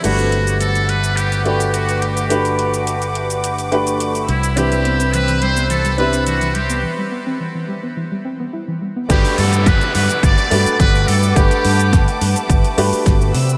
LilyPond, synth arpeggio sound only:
\new Staff \with { instrumentName = "Synth arpeggio sound" } { \clef bass \time 4/4 \key g \major \tempo 4 = 106 r1 | r1 | e16 g16 b16 c'16 e16 e16 g16 b16 e16 g16 b16 c'16 e16 e16 g16 b16 | e16 g16 b16 c'16 e16 e16 g16 b16 e16 g16 c'16 b16 e'16 e16 g16 b16 |
r1 | r1 | }